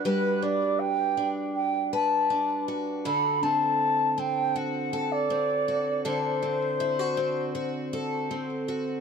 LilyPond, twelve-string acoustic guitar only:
\new Staff \with { instrumentName = "Twelve-string acoustic guitar" } { \time 4/4 \key d \mixolydian \tempo 4 = 80 <g d' fis' b'>8 d'4 d'4 b'8 d'8 fis'8 | <d a'>8 c'4 c'8 fis'8 a'8 c'8 fis'8 | <d a'>8 c'8 e'16 fis'16 c'8 fis'8 a'8 c'8 fis'8 | }